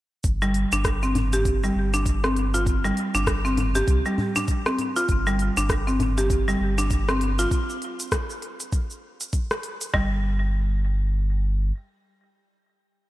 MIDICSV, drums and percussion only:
0, 0, Header, 1, 3, 480
1, 0, Start_track
1, 0, Tempo, 606061
1, 191, Time_signature, 4, 2, 24, 8
1, 10374, End_track
2, 0, Start_track
2, 0, Title_t, "Djembe"
2, 334, Note_on_c, 9, 62, 51
2, 414, Note_off_c, 9, 62, 0
2, 913, Note_on_c, 9, 62, 36
2, 914, Note_on_c, 9, 64, 91
2, 920, Note_on_c, 9, 63, 34
2, 993, Note_off_c, 9, 62, 0
2, 993, Note_off_c, 9, 64, 0
2, 999, Note_off_c, 9, 63, 0
2, 1053, Note_on_c, 9, 63, 74
2, 1132, Note_off_c, 9, 63, 0
2, 2019, Note_on_c, 9, 63, 35
2, 2098, Note_off_c, 9, 63, 0
2, 2255, Note_on_c, 9, 62, 51
2, 2334, Note_off_c, 9, 62, 0
2, 2829, Note_on_c, 9, 63, 41
2, 2830, Note_on_c, 9, 62, 32
2, 2832, Note_on_c, 9, 64, 80
2, 2908, Note_off_c, 9, 63, 0
2, 2909, Note_off_c, 9, 62, 0
2, 2911, Note_off_c, 9, 64, 0
2, 2975, Note_on_c, 9, 63, 87
2, 3055, Note_off_c, 9, 63, 0
2, 3311, Note_on_c, 9, 64, 89
2, 3390, Note_off_c, 9, 64, 0
2, 3457, Note_on_c, 9, 63, 77
2, 3537, Note_off_c, 9, 63, 0
2, 3788, Note_on_c, 9, 63, 53
2, 3868, Note_off_c, 9, 63, 0
2, 4174, Note_on_c, 9, 62, 47
2, 4253, Note_off_c, 9, 62, 0
2, 4750, Note_on_c, 9, 64, 94
2, 4751, Note_on_c, 9, 63, 35
2, 4754, Note_on_c, 9, 62, 36
2, 4829, Note_off_c, 9, 64, 0
2, 4831, Note_off_c, 9, 63, 0
2, 4833, Note_off_c, 9, 62, 0
2, 4894, Note_on_c, 9, 63, 77
2, 4974, Note_off_c, 9, 63, 0
2, 5856, Note_on_c, 9, 63, 35
2, 5936, Note_off_c, 9, 63, 0
2, 10374, End_track
3, 0, Start_track
3, 0, Title_t, "Drums"
3, 190, Note_on_c, 9, 46, 53
3, 191, Note_on_c, 9, 36, 95
3, 191, Note_on_c, 9, 82, 53
3, 270, Note_off_c, 9, 36, 0
3, 270, Note_off_c, 9, 46, 0
3, 270, Note_off_c, 9, 82, 0
3, 332, Note_on_c, 9, 82, 30
3, 412, Note_off_c, 9, 82, 0
3, 430, Note_on_c, 9, 46, 33
3, 509, Note_off_c, 9, 46, 0
3, 572, Note_on_c, 9, 46, 45
3, 573, Note_on_c, 9, 82, 63
3, 652, Note_off_c, 9, 46, 0
3, 652, Note_off_c, 9, 82, 0
3, 670, Note_on_c, 9, 36, 100
3, 671, Note_on_c, 9, 37, 76
3, 671, Note_on_c, 9, 46, 55
3, 671, Note_on_c, 9, 82, 57
3, 749, Note_off_c, 9, 36, 0
3, 750, Note_off_c, 9, 37, 0
3, 750, Note_off_c, 9, 46, 0
3, 751, Note_off_c, 9, 82, 0
3, 813, Note_on_c, 9, 82, 31
3, 892, Note_off_c, 9, 82, 0
3, 912, Note_on_c, 9, 46, 30
3, 991, Note_off_c, 9, 46, 0
3, 1053, Note_on_c, 9, 46, 43
3, 1053, Note_on_c, 9, 82, 65
3, 1132, Note_off_c, 9, 46, 0
3, 1132, Note_off_c, 9, 82, 0
3, 1150, Note_on_c, 9, 36, 103
3, 1152, Note_on_c, 9, 46, 53
3, 1152, Note_on_c, 9, 82, 49
3, 1229, Note_off_c, 9, 36, 0
3, 1231, Note_off_c, 9, 46, 0
3, 1231, Note_off_c, 9, 82, 0
3, 1295, Note_on_c, 9, 82, 32
3, 1374, Note_off_c, 9, 82, 0
3, 1535, Note_on_c, 9, 46, 48
3, 1535, Note_on_c, 9, 82, 67
3, 1614, Note_off_c, 9, 46, 0
3, 1614, Note_off_c, 9, 82, 0
3, 1630, Note_on_c, 9, 36, 98
3, 1632, Note_on_c, 9, 46, 54
3, 1632, Note_on_c, 9, 82, 50
3, 1709, Note_off_c, 9, 36, 0
3, 1711, Note_off_c, 9, 46, 0
3, 1711, Note_off_c, 9, 82, 0
3, 1774, Note_on_c, 9, 37, 77
3, 1774, Note_on_c, 9, 82, 30
3, 1853, Note_off_c, 9, 37, 0
3, 1853, Note_off_c, 9, 82, 0
3, 1873, Note_on_c, 9, 46, 41
3, 1952, Note_off_c, 9, 46, 0
3, 2015, Note_on_c, 9, 46, 52
3, 2015, Note_on_c, 9, 82, 64
3, 2094, Note_off_c, 9, 46, 0
3, 2095, Note_off_c, 9, 82, 0
3, 2110, Note_on_c, 9, 36, 106
3, 2113, Note_on_c, 9, 46, 53
3, 2113, Note_on_c, 9, 82, 51
3, 2189, Note_off_c, 9, 36, 0
3, 2192, Note_off_c, 9, 46, 0
3, 2192, Note_off_c, 9, 82, 0
3, 2254, Note_on_c, 9, 82, 32
3, 2334, Note_off_c, 9, 82, 0
3, 2352, Note_on_c, 9, 46, 33
3, 2431, Note_off_c, 9, 46, 0
3, 2493, Note_on_c, 9, 46, 43
3, 2494, Note_on_c, 9, 82, 67
3, 2573, Note_off_c, 9, 46, 0
3, 2573, Note_off_c, 9, 82, 0
3, 2589, Note_on_c, 9, 36, 99
3, 2591, Note_on_c, 9, 37, 85
3, 2591, Note_on_c, 9, 46, 59
3, 2591, Note_on_c, 9, 82, 60
3, 2668, Note_off_c, 9, 36, 0
3, 2670, Note_off_c, 9, 37, 0
3, 2670, Note_off_c, 9, 46, 0
3, 2670, Note_off_c, 9, 82, 0
3, 2734, Note_on_c, 9, 82, 32
3, 2813, Note_off_c, 9, 82, 0
3, 2831, Note_on_c, 9, 46, 32
3, 2910, Note_off_c, 9, 46, 0
3, 2972, Note_on_c, 9, 46, 44
3, 2973, Note_on_c, 9, 82, 70
3, 3052, Note_off_c, 9, 46, 0
3, 3052, Note_off_c, 9, 82, 0
3, 3069, Note_on_c, 9, 36, 104
3, 3071, Note_on_c, 9, 46, 50
3, 3071, Note_on_c, 9, 82, 55
3, 3148, Note_off_c, 9, 36, 0
3, 3150, Note_off_c, 9, 46, 0
3, 3150, Note_off_c, 9, 82, 0
3, 3212, Note_on_c, 9, 82, 33
3, 3292, Note_off_c, 9, 82, 0
3, 3453, Note_on_c, 9, 46, 43
3, 3453, Note_on_c, 9, 82, 68
3, 3532, Note_off_c, 9, 46, 0
3, 3532, Note_off_c, 9, 82, 0
3, 3549, Note_on_c, 9, 36, 101
3, 3549, Note_on_c, 9, 46, 52
3, 3549, Note_on_c, 9, 82, 52
3, 3628, Note_off_c, 9, 36, 0
3, 3628, Note_off_c, 9, 46, 0
3, 3628, Note_off_c, 9, 82, 0
3, 3692, Note_on_c, 9, 37, 78
3, 3692, Note_on_c, 9, 82, 32
3, 3771, Note_off_c, 9, 37, 0
3, 3771, Note_off_c, 9, 82, 0
3, 3790, Note_on_c, 9, 46, 43
3, 3869, Note_off_c, 9, 46, 0
3, 3933, Note_on_c, 9, 46, 51
3, 3933, Note_on_c, 9, 82, 62
3, 4012, Note_off_c, 9, 46, 0
3, 4012, Note_off_c, 9, 82, 0
3, 4029, Note_on_c, 9, 36, 111
3, 4029, Note_on_c, 9, 46, 52
3, 4029, Note_on_c, 9, 82, 56
3, 4108, Note_off_c, 9, 36, 0
3, 4108, Note_off_c, 9, 46, 0
3, 4108, Note_off_c, 9, 82, 0
3, 4172, Note_on_c, 9, 82, 34
3, 4251, Note_off_c, 9, 82, 0
3, 4270, Note_on_c, 9, 46, 31
3, 4349, Note_off_c, 9, 46, 0
3, 4413, Note_on_c, 9, 46, 42
3, 4413, Note_on_c, 9, 82, 74
3, 4492, Note_off_c, 9, 46, 0
3, 4492, Note_off_c, 9, 82, 0
3, 4509, Note_on_c, 9, 36, 102
3, 4512, Note_on_c, 9, 37, 82
3, 4512, Note_on_c, 9, 46, 56
3, 4512, Note_on_c, 9, 82, 61
3, 4589, Note_off_c, 9, 36, 0
3, 4591, Note_off_c, 9, 37, 0
3, 4591, Note_off_c, 9, 46, 0
3, 4591, Note_off_c, 9, 82, 0
3, 4654, Note_on_c, 9, 82, 33
3, 4733, Note_off_c, 9, 82, 0
3, 4751, Note_on_c, 9, 46, 29
3, 4831, Note_off_c, 9, 46, 0
3, 4894, Note_on_c, 9, 46, 43
3, 4894, Note_on_c, 9, 82, 69
3, 4973, Note_off_c, 9, 46, 0
3, 4973, Note_off_c, 9, 82, 0
3, 4990, Note_on_c, 9, 36, 111
3, 4992, Note_on_c, 9, 46, 51
3, 4992, Note_on_c, 9, 82, 56
3, 5069, Note_off_c, 9, 36, 0
3, 5071, Note_off_c, 9, 46, 0
3, 5071, Note_off_c, 9, 82, 0
3, 5134, Note_on_c, 9, 82, 34
3, 5213, Note_off_c, 9, 82, 0
3, 5373, Note_on_c, 9, 46, 45
3, 5373, Note_on_c, 9, 82, 72
3, 5452, Note_off_c, 9, 46, 0
3, 5452, Note_off_c, 9, 82, 0
3, 5470, Note_on_c, 9, 36, 97
3, 5470, Note_on_c, 9, 46, 49
3, 5471, Note_on_c, 9, 82, 56
3, 5549, Note_off_c, 9, 36, 0
3, 5550, Note_off_c, 9, 46, 0
3, 5550, Note_off_c, 9, 82, 0
3, 5612, Note_on_c, 9, 37, 78
3, 5612, Note_on_c, 9, 82, 33
3, 5691, Note_off_c, 9, 37, 0
3, 5692, Note_off_c, 9, 82, 0
3, 5711, Note_on_c, 9, 46, 44
3, 5790, Note_off_c, 9, 46, 0
3, 5853, Note_on_c, 9, 46, 50
3, 5853, Note_on_c, 9, 82, 73
3, 5932, Note_off_c, 9, 46, 0
3, 5933, Note_off_c, 9, 82, 0
3, 5950, Note_on_c, 9, 36, 114
3, 5953, Note_on_c, 9, 46, 52
3, 5953, Note_on_c, 9, 82, 54
3, 6029, Note_off_c, 9, 36, 0
3, 6032, Note_off_c, 9, 46, 0
3, 6032, Note_off_c, 9, 82, 0
3, 6096, Note_on_c, 9, 82, 32
3, 6175, Note_off_c, 9, 82, 0
3, 6192, Note_on_c, 9, 46, 29
3, 6271, Note_off_c, 9, 46, 0
3, 6335, Note_on_c, 9, 46, 44
3, 6335, Note_on_c, 9, 82, 71
3, 6414, Note_off_c, 9, 46, 0
3, 6414, Note_off_c, 9, 82, 0
3, 6430, Note_on_c, 9, 36, 98
3, 6431, Note_on_c, 9, 37, 82
3, 6431, Note_on_c, 9, 46, 54
3, 6431, Note_on_c, 9, 82, 61
3, 6509, Note_off_c, 9, 36, 0
3, 6510, Note_off_c, 9, 37, 0
3, 6510, Note_off_c, 9, 46, 0
3, 6510, Note_off_c, 9, 82, 0
3, 6572, Note_on_c, 9, 82, 34
3, 6652, Note_off_c, 9, 82, 0
3, 6671, Note_on_c, 9, 46, 29
3, 6750, Note_off_c, 9, 46, 0
3, 6812, Note_on_c, 9, 46, 42
3, 6812, Note_on_c, 9, 82, 69
3, 6892, Note_off_c, 9, 46, 0
3, 6892, Note_off_c, 9, 82, 0
3, 6910, Note_on_c, 9, 36, 113
3, 6911, Note_on_c, 9, 46, 49
3, 6911, Note_on_c, 9, 82, 55
3, 6989, Note_off_c, 9, 36, 0
3, 6990, Note_off_c, 9, 46, 0
3, 6990, Note_off_c, 9, 82, 0
3, 7052, Note_on_c, 9, 82, 34
3, 7132, Note_off_c, 9, 82, 0
3, 7293, Note_on_c, 9, 46, 44
3, 7293, Note_on_c, 9, 82, 70
3, 7372, Note_off_c, 9, 46, 0
3, 7372, Note_off_c, 9, 82, 0
3, 7389, Note_on_c, 9, 46, 51
3, 7389, Note_on_c, 9, 82, 55
3, 7390, Note_on_c, 9, 36, 95
3, 7468, Note_off_c, 9, 46, 0
3, 7468, Note_off_c, 9, 82, 0
3, 7469, Note_off_c, 9, 36, 0
3, 7532, Note_on_c, 9, 37, 79
3, 7532, Note_on_c, 9, 82, 33
3, 7611, Note_off_c, 9, 37, 0
3, 7611, Note_off_c, 9, 82, 0
3, 7629, Note_on_c, 9, 46, 42
3, 7709, Note_off_c, 9, 46, 0
3, 7771, Note_on_c, 9, 46, 49
3, 7771, Note_on_c, 9, 82, 73
3, 7850, Note_off_c, 9, 46, 0
3, 7850, Note_off_c, 9, 82, 0
3, 7869, Note_on_c, 9, 38, 104
3, 7870, Note_on_c, 9, 36, 101
3, 7948, Note_off_c, 9, 38, 0
3, 7949, Note_off_c, 9, 36, 0
3, 10374, End_track
0, 0, End_of_file